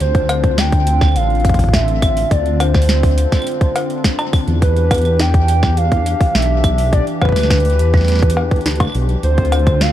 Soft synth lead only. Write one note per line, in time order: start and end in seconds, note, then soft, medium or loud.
0.00 0.59 C5 loud
0.58 1.17 G5 loud
1.16 1.75 F5 loud
1.74 2.33 E5 loud
2.31 2.62 D5 loud
2.60 4.33 C5 medium
4.62 5.21 B4 loud
5.20 5.79 G5 loud
5.77 6.36 F5 loud
6.35 6.92 E5 loud
6.93 7.06 D5 loud
7.22 8.91 B4 medium
9.23 9.83 C5 loud
9.81 9.92 F5 loud